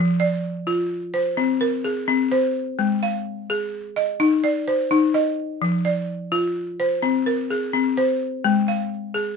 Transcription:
Already playing: F3
0.20 D5
0.67 F4
1.14 C5
1.37 C4
1.61 A#4
1.84 G#4
2.08 C4
2.32 C5
2.79 G#3
3.03 F5
3.50 G#4
3.96 D#5
4.20 D#4
4.44 D5
4.68 C5
4.91 D#4
5.14 D#5
5.62 F3
5.85 D5
6.32 F4
6.80 C5
7.02 C4
7.26 A#4
7.50 G#4
7.74 C4
7.97 C5
8.44 G#3
8.68 F5
9.14 G#4

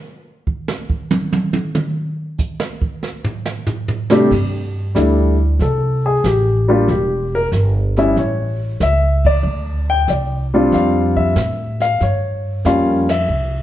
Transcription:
0.47 kick
0.68 snare
0.90 kick
1.11 hi-hat pedal, high tom
1.33 high tom
1.53 high tom
1.75 mid tom
2.39 kick, hi-hat pedal
2.60 snare
2.82 kick
3.03 snare
3.24 floor tom
3.46 snare
3.66 floor tom, hi-hat pedal
3.88 floor tom
4.10 C3 G3 A3 D4 G4, snare
4.31 G2, brush sweep, kick, snare, crash
4.95 D2 G3 A3 D4 E4, kick, snare, hi-hat pedal
5.59 C2 A4, brush sweep, kick, snare
6.06 G#4
6.24 A1 G4, kick, snare, hi-hat pedal
6.68 G3 A#3 D4 F4 G4
6.88 E1 G4, brush sweep, kick, snare
7.35 A#4
7.52 G1, kick, snare, hi-hat pedal
7.97 G3 B3 C#4 E4 E5, snare
8.16 A1 C#5, brush sweep, kick, snare
8.80 C#2 E5, kick, snare, hi-hat pedal
9.25 D5, kick, crash
9.43 D2, brush sweep
9.90 G5
10.08 C2 D5, kick, snare, hi-hat pedal
10.54 G3 C4 D4 F4
10.72 F2 F5, brush sweep, kick, snare
11.17 E5, kick
11.36 A2, kick, snare, hi-hat pedal
11.80 F5, snare
12.00 G2 C#5, brush sweep, kick, snare
12.65 F2 G3 A#3 C#4 F4 F5, kick, snare, hi-hat pedal
13.09 E5, snare, ride
13.29 C2, brush sweep

